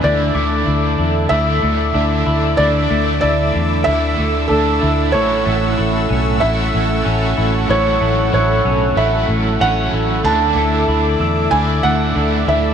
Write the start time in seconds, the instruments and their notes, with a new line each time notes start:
Already playing: clean electric guitar D4
0.01 fingered electric bass D2, overdriven electric guitar D3 A3 D4 E4, clean electric guitar D3 E4, analog synth pad A4 E5 D6 E6, felt piano D5
0.34 fingered electric bass D2, clean electric guitar A3, overdriven electric guitar D4 E4, glockenspiel D6
0.39 overdriven electric guitar A3
0.67 fingered electric bass D2, clean electric guitar E4
0.98 fingered electric bass E2, clean electric guitar D4
1.29 fingered electric bass D2, overdriven electric guitar D3 A3 D4, clean electric guitar E4, felt piano E5, glockenspiel E6
1.35 overdriven electric guitar E4
1.62 fingered electric bass D2, clean electric guitar A3
1.93 fingered electric bass D2, overdriven electric guitar D3 A3 D4, clean electric guitar D4
1.99 overdriven electric guitar E4
2.26 fingered electric bass D2, clean electric guitar E4
2.57 fingered electric bass D2, overdriven electric guitar D3 A3, clean electric guitar D3 E4, felt piano D5
2.62 overdriven electric guitar D4 E4
2.90 fingered electric bass D2, clean electric guitar A3
3.21 fingered electric bass D2, clean electric guitar E4, felt piano D5
3.53 fingered electric bass E2, clean electric guitar D4
3.84 fingered electric bass D2, overdriven electric guitar D3 A3 D4, clean electric guitar E4, felt piano E5
3.89 overdriven electric guitar E4
4.17 fingered electric bass D2, clean electric guitar A3
4.48 fingered electric bass D2, overdriven electric guitar D3 A3 D4, clean electric guitar D4, felt piano A4
4.53 overdriven electric guitar E4
4.82 fingered electric bass D2, clean electric guitar E4
5.11 fingered electric bass A1, overdriven electric guitar A2 F#3, clean electric guitar A2 E4, felt piano C#5, analog synth pad F#5 C#6
5.15 overdriven electric guitar A3 C#4 E4
5.46 fingered electric bass A1, clean electric guitar A3
5.77 fingered electric bass A1, clean electric guitar E4
6.09 fingered electric bass B1, clean electric guitar C#4
6.39 fingered electric bass A1, overdriven electric guitar F#3 A3 C#4, clean electric guitar E4, felt piano E5
6.45 overdriven electric guitar E4
6.74 fingered electric bass A1, clean electric guitar A3
7.04 fingered electric bass A1, overdriven electric guitar F#3 A3 C#4, clean electric guitar C#4
7.09 overdriven electric guitar E4
7.37 fingered electric bass A1, clean electric guitar E4
7.67 fingered electric bass A1, overdriven electric guitar A2 F#3, clean electric guitar A2 E4, felt piano C#5
7.71 overdriven electric guitar A3 C#4 E4
8.01 fingered electric bass A1, clean electric guitar A3
8.33 fingered electric bass A1, clean electric guitar E4, felt piano C#5, glockenspiel F#6
8.65 fingered electric bass B1, clean electric guitar C#4
8.96 fingered electric bass A1, overdriven electric guitar F#3 A3 C#4, clean electric guitar E4, felt piano E5
9.00 overdriven electric guitar E4
9.29 fingered electric bass A1, clean electric guitar A3
9.58 fingered electric bass A1, overdriven electric guitar F#3 A3, clean electric guitar C#4, felt piano F#5
9.63 overdriven electric guitar C#4 E4
9.93 fingered electric bass A1, clean electric guitar E4
10.23 fingered electric bass D2, overdriven electric guitar D3 A3 D4 E4, clean electric guitar D3 E4, analog synth pad E5 D6 E6, felt piano A5
10.55 fingered electric bass D2, clean electric guitar A3, overdriven electric guitar D4 E4
10.60 overdriven electric guitar A3
10.88 fingered electric bass D2, clean electric guitar E4
11.20 fingered electric bass E2, clean electric guitar D4, glockenspiel E6
11.51 fingered electric bass D2, overdriven electric guitar D3 A3, clean electric guitar E4, felt piano G#5
11.55 overdriven electric guitar D4 E4
11.83 fingered electric bass D2, clean electric guitar A3, felt piano F#5
12.15 fingered electric bass D2, overdriven electric guitar D3 A3 D4, clean electric guitar D4
12.20 overdriven electric guitar E4
12.48 fingered electric bass D2, clean electric guitar E4, felt piano E5